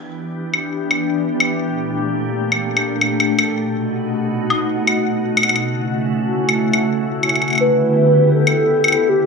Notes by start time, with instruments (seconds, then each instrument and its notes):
Already playing: ambient pad E3 B3 D4 G4
0.54 high woodblock
0.91 high woodblock
1.40 high woodblock
1.65 ambient pad A#2 A3
2.52 high woodblock
2.77 high woodblock
3.01 high woodblock
3.20 high woodblock
3.39 high woodblock
3.63 ambient pad B2 D#4 F#4
4.50 high woodblock
4.87 high woodblock
5.37 high woodblock
5.43 high woodblock
5.49 high woodblock
5.56 high woodblock
5.62 ambient pad C#3 A3 E4
6.49 high woodblock
6.73 high woodblock
7.23 high woodblock
7.29 high woodblock
7.36 high woodblock
7.42 high woodblock
7.48 high woodblock
7.50 high woodblock
7.53 high woodblock
7.55 high woodblock
7.58 ambient pad D3 B3 G4, soft synth lead B4, high woodblock
8.34 soft synth lead A4
8.47 high woodblock
8.84 high woodblock
8.88 high woodblock
8.92 high woodblock
9.09 soft synth lead G4